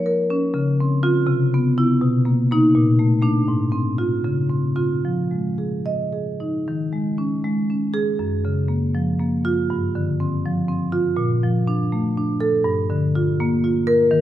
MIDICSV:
0, 0, Header, 1, 2, 480
1, 0, Start_track
1, 0, Tempo, 489396
1, 536, Time_signature, 6, 3, 24, 8
1, 3413, Tempo, 512821
1, 4373, Tempo, 539568
1, 6293, Tempo, 511509
1, 7733, Tempo, 500000
1, 11093, Tempo, 488998
1, 13559, End_track
2, 0, Start_track
2, 0, Title_t, "Marimba"
2, 0, Program_c, 0, 12
2, 0, Note_on_c, 0, 53, 64
2, 0, Note_on_c, 0, 73, 80
2, 58, Note_on_c, 0, 70, 54
2, 195, Note_off_c, 0, 73, 0
2, 298, Note_on_c, 0, 61, 57
2, 442, Note_off_c, 0, 70, 0
2, 496, Note_off_c, 0, 53, 0
2, 528, Note_on_c, 0, 49, 65
2, 537, Note_off_c, 0, 61, 0
2, 789, Note_on_c, 0, 60, 53
2, 1002, Note_off_c, 0, 60, 0
2, 1011, Note_on_c, 0, 65, 76
2, 1014, Note_on_c, 0, 60, 49
2, 1227, Note_off_c, 0, 49, 0
2, 1227, Note_off_c, 0, 65, 0
2, 1229, Note_off_c, 0, 60, 0
2, 1242, Note_on_c, 0, 48, 72
2, 1511, Note_on_c, 0, 59, 54
2, 1730, Note_off_c, 0, 59, 0
2, 1742, Note_on_c, 0, 59, 52
2, 1744, Note_on_c, 0, 64, 73
2, 1950, Note_off_c, 0, 48, 0
2, 1956, Note_off_c, 0, 59, 0
2, 1958, Note_off_c, 0, 64, 0
2, 1975, Note_on_c, 0, 47, 63
2, 2210, Note_on_c, 0, 58, 51
2, 2451, Note_off_c, 0, 58, 0
2, 2463, Note_on_c, 0, 58, 49
2, 2473, Note_on_c, 0, 63, 75
2, 2675, Note_off_c, 0, 47, 0
2, 2676, Note_off_c, 0, 58, 0
2, 2682, Note_off_c, 0, 63, 0
2, 2697, Note_on_c, 0, 46, 66
2, 2934, Note_on_c, 0, 57, 47
2, 3144, Note_off_c, 0, 57, 0
2, 3155, Note_on_c, 0, 57, 46
2, 3162, Note_on_c, 0, 62, 73
2, 3380, Note_off_c, 0, 57, 0
2, 3384, Note_off_c, 0, 62, 0
2, 3392, Note_off_c, 0, 46, 0
2, 3415, Note_on_c, 0, 44, 53
2, 3637, Note_on_c, 0, 60, 48
2, 3873, Note_off_c, 0, 60, 0
2, 3884, Note_on_c, 0, 60, 39
2, 3884, Note_on_c, 0, 65, 62
2, 4103, Note_off_c, 0, 60, 0
2, 4103, Note_off_c, 0, 65, 0
2, 4108, Note_off_c, 0, 44, 0
2, 4128, Note_on_c, 0, 49, 51
2, 4363, Note_on_c, 0, 60, 41
2, 4588, Note_off_c, 0, 60, 0
2, 4597, Note_on_c, 0, 65, 57
2, 4598, Note_on_c, 0, 60, 39
2, 4824, Note_off_c, 0, 60, 0
2, 4824, Note_off_c, 0, 65, 0
2, 4836, Note_off_c, 0, 49, 0
2, 4856, Note_on_c, 0, 53, 46
2, 5090, Note_on_c, 0, 56, 34
2, 5330, Note_on_c, 0, 68, 37
2, 5477, Note_off_c, 0, 56, 0
2, 5575, Note_on_c, 0, 75, 53
2, 5716, Note_off_c, 0, 68, 0
2, 5815, Note_on_c, 0, 68, 34
2, 5960, Note_off_c, 0, 75, 0
2, 6060, Note_on_c, 0, 63, 37
2, 6201, Note_off_c, 0, 68, 0
2, 6258, Note_off_c, 0, 53, 0
2, 6296, Note_off_c, 0, 63, 0
2, 6307, Note_on_c, 0, 51, 52
2, 6540, Note_on_c, 0, 56, 39
2, 6779, Note_on_c, 0, 61, 48
2, 6923, Note_off_c, 0, 56, 0
2, 7026, Note_on_c, 0, 56, 51
2, 7164, Note_off_c, 0, 61, 0
2, 7267, Note_on_c, 0, 61, 43
2, 7407, Note_off_c, 0, 56, 0
2, 7487, Note_on_c, 0, 68, 67
2, 7644, Note_off_c, 0, 61, 0
2, 7704, Note_off_c, 0, 51, 0
2, 7728, Note_on_c, 0, 42, 53
2, 7730, Note_off_c, 0, 68, 0
2, 7972, Note_on_c, 0, 49, 44
2, 8199, Note_on_c, 0, 58, 45
2, 8361, Note_off_c, 0, 49, 0
2, 8451, Note_on_c, 0, 53, 48
2, 8593, Note_off_c, 0, 58, 0
2, 8690, Note_on_c, 0, 58, 46
2, 8838, Note_off_c, 0, 53, 0
2, 8933, Note_on_c, 0, 65, 69
2, 9078, Note_off_c, 0, 58, 0
2, 9136, Note_off_c, 0, 42, 0
2, 9176, Note_on_c, 0, 43, 59
2, 9177, Note_off_c, 0, 65, 0
2, 9418, Note_on_c, 0, 50, 47
2, 9656, Note_on_c, 0, 60, 50
2, 9804, Note_off_c, 0, 50, 0
2, 9903, Note_on_c, 0, 53, 49
2, 10041, Note_off_c, 0, 60, 0
2, 10119, Note_on_c, 0, 60, 44
2, 10281, Note_off_c, 0, 53, 0
2, 10349, Note_on_c, 0, 65, 75
2, 10507, Note_off_c, 0, 60, 0
2, 10573, Note_off_c, 0, 43, 0
2, 10582, Note_on_c, 0, 46, 61
2, 10600, Note_off_c, 0, 65, 0
2, 10836, Note_on_c, 0, 53, 51
2, 11071, Note_on_c, 0, 62, 52
2, 11230, Note_off_c, 0, 53, 0
2, 11314, Note_on_c, 0, 57, 54
2, 11466, Note_off_c, 0, 62, 0
2, 11560, Note_on_c, 0, 62, 56
2, 11702, Note_off_c, 0, 57, 0
2, 11787, Note_on_c, 0, 69, 72
2, 11942, Note_off_c, 0, 62, 0
2, 11989, Note_off_c, 0, 46, 0
2, 12023, Note_on_c, 0, 43, 67
2, 12034, Note_off_c, 0, 69, 0
2, 12270, Note_on_c, 0, 50, 53
2, 12523, Note_on_c, 0, 65, 61
2, 12667, Note_off_c, 0, 50, 0
2, 12765, Note_on_c, 0, 58, 68
2, 12911, Note_off_c, 0, 65, 0
2, 13001, Note_on_c, 0, 65, 55
2, 13152, Note_off_c, 0, 58, 0
2, 13225, Note_on_c, 0, 70, 87
2, 13391, Note_off_c, 0, 65, 0
2, 13444, Note_off_c, 0, 43, 0
2, 13460, Note_on_c, 0, 51, 71
2, 13480, Note_off_c, 0, 70, 0
2, 13559, Note_off_c, 0, 51, 0
2, 13559, End_track
0, 0, End_of_file